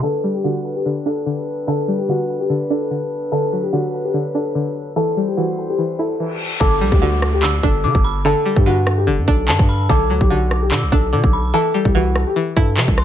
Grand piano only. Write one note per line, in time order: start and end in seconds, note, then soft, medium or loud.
0.03 0.32 A4 loud
0.34 0.42 G4 medium
0.44 0.74 F#4 medium
0.76 0.84 G4 medium
1.06 1.64 A4 medium
1.68 1.97 A4 loud
1.99 2.06 G4 medium
2.09 2.39 F#4 medium
2.40 2.48 G4 medium
2.70 3.28 A4 medium
3.32 3.61 A4 loud
3.63 3.71 G4 medium
3.73 4.02 F#4 medium
4.05 4.12 G4 medium
4.34 4.92 A4 medium
4.96 5.26 A4 loud
5.28 5.36 G4 medium
5.37 5.67 F#4 medium
5.70 5.77 G4 medium
5.99 6.57 A4 medium
6.60 6.90 A4 loud
6.92 7.00 G4 medium
7.01 7.31 F#4 medium
7.34 7.41 G4 medium
7.64 8.22 A4 medium
8.25 8.55 A4 loud
8.56 8.64 G4 medium
8.67 8.96 F#4 medium
8.98 9.05 G4 medium
9.28 9.86 A4 medium
9.89 10.19 A4 loud
10.21 10.28 G4 medium
10.30 10.60 F#4 medium
10.62 10.70 G4 medium
10.92 11.50 A4 medium
11.54 11.83 A4 loud
11.86 11.93 G4 medium
11.95 12.24 F#4 medium
12.27 12.35 G4 medium
12.56 13.04 A4 medium